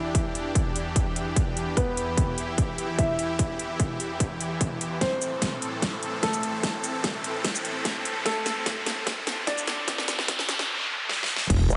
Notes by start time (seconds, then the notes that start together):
Already playing: E2 E3 D4 E4 G4, riser
0.15 kick, closed hi-hat
0.35 closed hi-hat
0.55 kick, closed hi-hat
0.76 closed hi-hat
0.96 kick, closed hi-hat
1.16 closed hi-hat
1.36 kick, closed hi-hat
1.57 closed hi-hat
1.77 B3 E4 B4, kick, closed hi-hat
1.97 closed hi-hat
2.18 kick, closed hi-hat
2.38 closed hi-hat
2.58 kick, closed hi-hat
2.78 closed hi-hat
2.99 E4 E5, kick, closed hi-hat
3.19 closed hi-hat
3.39 kick, closed hi-hat
3.59 closed hi-hat
3.80 kick, closed hi-hat
4.00 closed hi-hat
4.20 kick, closed hi-hat
4.41 closed hi-hat
4.61 kick, closed hi-hat
4.81 closed hi-hat
5.01 A2 C4 A4 C5, kick, snare, closed hi-hat
5.22 closed hi-hat, shaker
5.42 kick, snare, closed hi-hat
5.62 closed hi-hat
5.82 kick, snare, closed hi-hat
6.03 closed hi-hat
6.23 A3 A4, kick, snare, closed hi-hat
6.34 shaker
6.43 closed hi-hat
6.63 kick, snare, closed hi-hat
6.84 closed hi-hat, shaker
7.04 kick, snare, closed hi-hat
7.24 closed hi-hat
7.45 kick, snare, closed hi-hat
7.55 shaker
7.65 closed hi-hat
7.85 kick, snare, closed hi-hat
8.05 closed hi-hat
8.26 A3 A4, kick, snare, closed hi-hat
8.46 snare, closed hi-hat, shaker
8.66 kick, snare, closed hi-hat
8.86 snare, closed hi-hat
9.07 kick, snare, closed hi-hat
9.27 snare, closed hi-hat
9.47 D4 D5, kick, snare, closed hi-hat
9.58 shaker
9.67 snare, closed hi-hat
9.88 kick, snare, closed hi-hat, noise sweep
9.98 snare
10.08 snare, closed hi-hat, shaker
10.19 snare
10.28 kick, snare, closed hi-hat
10.39 snare
10.49 snare, closed hi-hat
10.59 snare
11.09 snare
11.23 snare
11.36 snare
11.50 E1, kick, closed hi-hat, crash, sub drop
11.70 E1, closed hi-hat, shaker